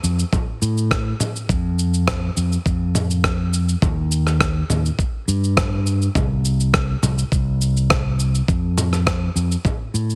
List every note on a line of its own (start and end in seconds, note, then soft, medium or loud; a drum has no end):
0.03 0.23 F2 loud
0.03 shaker medium
0.19 shaker soft
0.33 kick loud
0.33 mid tom medium
0.33 shaker soft
0.62 1.12 A2 loud
0.62 shaker medium
0.78 shaker soft
0.91 kick loud
0.91 cross-stick loud
0.91 shaker soft
1.20 mid tom medium
1.20 shaker medium
1.36 shaker soft
1.49 2.29 F2 loud
1.49 kick loud
1.49 shaker soft
1.79 shaker medium
1.94 shaker soft
2.08 kick loud
2.08 cross-stick loud
2.08 mid tom medium
2.08 shaker soft
2.37 2.56 F2 medium
2.37 shaker medium
2.52 shaker medium
2.66 3.74 F2 medium
2.66 kick loud
2.66 shaker soft
2.95 mid tom medium
2.95 shaker medium
3.11 shaker soft
3.24 kick loud
3.24 cross-stick loud
3.24 shaker soft
3.53 shaker medium
3.69 shaker soft
3.82 4.62 D#2 loud
3.82 kick loud
3.82 mid tom medium
3.82 shaker soft
4.12 shaker medium
4.27 cross-stick soft
4.27 shaker soft
4.40 kick loud
4.40 cross-stick loud
4.40 shaker soft
4.70 4.89 D#2 medium
4.70 mid tom medium
4.70 shaker medium
4.86 shaker soft
4.99 kick loud
4.99 shaker soft
5.28 6.07 G2 medium
5.28 shaker medium
5.44 shaker soft
5.57 kick loud
5.57 cross-stick loud
5.57 mid tom medium
5.57 shaker soft
5.86 shaker medium
6.02 shaker soft
6.15 6.95 C2 medium
6.15 kick loud
6.15 mid tom medium
6.15 shaker soft
6.45 shaker medium
6.60 shaker soft
6.74 kick loud
6.74 cross-stick loud
6.74 shaker soft
7.03 7.22 C2 loud
7.03 mid tom medium
7.03 shaker medium
7.18 shaker soft
7.32 8.40 C2 medium
7.32 kick loud
7.32 shaker soft
7.61 shaker medium
7.77 shaker soft
7.90 kick loud
7.90 cross-stick medium
7.90 mid tom medium
7.90 shaker soft
8.20 shaker medium
8.35 shaker soft
8.48 9.28 F2 loud
8.48 kick loud
8.48 shaker soft
8.78 mid tom medium
8.78 shaker medium
8.93 cross-stick soft
8.93 shaker soft
9.07 kick medium
9.07 cross-stick loud
9.07 shaker soft
9.36 9.55 F2 loud
9.36 shaker medium
9.52 shaker soft
9.65 kick loud
9.65 mid tom medium
9.65 shaker soft
9.94 10.15 A2 loud
9.94 shaker medium
10.10 shaker soft